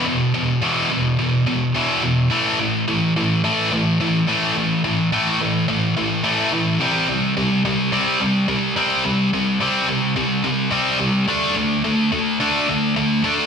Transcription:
X:1
M:4/4
L:1/8
Q:1/4=107
K:A
V:1 name="Distorted electric guitar" clef=bass
[E,,B,,] [E,,B,,] [E,,B,,E,] [E,,B,,] [E,,B,,] [E,,B,,] [E,,B,,E,] [E,,B,,] | [A,,E,A,] [A,,E,] [A,,E,] [A,,E,] [A,,E,A,] [A,,E,] [A,,E,] [A,,E,A,] | [A,,E,] [A,,E,] [A,,E,A,] [A,,E,] [A,,E,] [A,,E,] [A,,E,A,] [A,,E,] | [=C,=G,=C] [C,G,] [C,G,] [C,G,] [C,G,C] [C,G,] [C,G,] [C,G,C] |
[=C,=G,] [C,G,] [C,G,=C] [C,G,] [C,G,] [C,G,] [C,G,C] [C,G,] | [D,A,D] [D,A,] [D,A,] [D,A,] [D,A,D] [D,A,] [D,A,] [D,A,D] |]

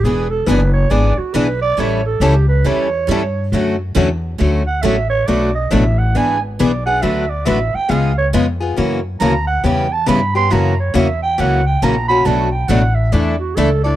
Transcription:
X:1
M:4/4
L:1/8
Q:"Swing" 1/4=138
K:D
V:1 name="Clarinet"
^G A B c d F B d | c A G B c4 | z4 z f e c | [K:Bm] d ^d e f ^g B =d f |
e d e g ^e c z2 | z2 ^a f g =a b =c' | ^a c e g f g a b | a g f e d F A d |]
V:2 name="Steel-string acoustic guitar"
[E,B,D^GB] z [E,B,DGB] z [E,B,DGB] z [E,B,DGB] z | [E,G,CEA] z [E,G,CEA] z [E,G,CEA] z [E,G,CEA] z | [D,A,CFA] z [D,A,CFA] z [D,A,CFA] z [D,A,CFA] z | [K:Bm] [B,,F,A,DFB] z [B,,F,A,DFB] z [E,B,D^GB] z [E,B,DGB] z |
[D,F,B,FA] z [D,F,B,FA] z [C,^G,B,^E^G] z [C,G,B,EG] z | [F,CE^A] z [F,CEA] z [C,G,B,EB] z [C,G,B,EB] z | [F,CE^A] z [F,CEA] z [F,CEA] z [F,CEA] z | [B,,F,A,DFB] z [B,,F,A,DFB] z [E,A,DEA] z [E,A,DEA] z |]
V:3 name="Steel-string acoustic guitar"
[E,B,D^G] z [E,B,DG] z [E,B,DG] z [E,B,DG] z | [E,G,CEA] z [E,G,CEA] z [E,G,CEA] z [E,G,CEA] z | [D,F,A,CF] z [D,F,A,CF] z [D,F,A,CF] z [D,F,A,CF] z | [K:Bm] [B,,F,A,DF] z [B,,F,A,DF] z [E,B,D^G] z [E,B,DG] [B,DG] |
[D,F,A,DFB] z [D,F,A,DFB] z [C,^G,B,^E^G] z [C,G,B,EG] [B,EG] | [C,E,^A,CF] z [C,E,A,CF] z [C,E,B,CG] z [C,E,B,CG] [B,CG] | [C,E,^A,CF] z [C,E,A,CF] z [C,E,A,CF] z [C,E,A,CF] [A,CF] | [B,,F,A,DF] z [B,,F,A,DF] z [E,A,DEA] z [E,A,DEA] [DEA] |]
V:4 name="Upright bass" clef=bass
E,,,2 F,,,2 ^G,,, z B,,,2 | A,,,2 C,,2 E,,2 G,,2 | F,,2 E,,2 D,,2 A,,,2 | [K:Bm] B,,,2 A,,,2 ^G,,,2 B,,,2 |
D,,2 A,,, z C,,2 ^E,,2 | F,,2 D,,2 E,,2 G,,2 | F,,2 E,,2 C,,2 ^A,,,2 | B,,,2 A,,,2 E,,2 C,,2 |]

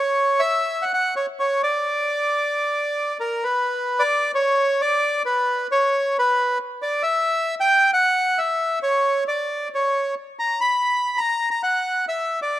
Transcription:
X:1
M:4/4
L:1/16
Q:1/4=134
K:Bm
V:1 name="Bandoneon"
c3 e4 f f2 c2 c2 d2- | d12 ^A2 B2- | B3 d3 c4 d4 B2- | B2 c4 B4 z2 d2 e2- |
e3 g3 f4 e4 c2- | c2 d4 c4 z2 ^a2 b2- | b3 ^a3 a f4 e3 d2 |]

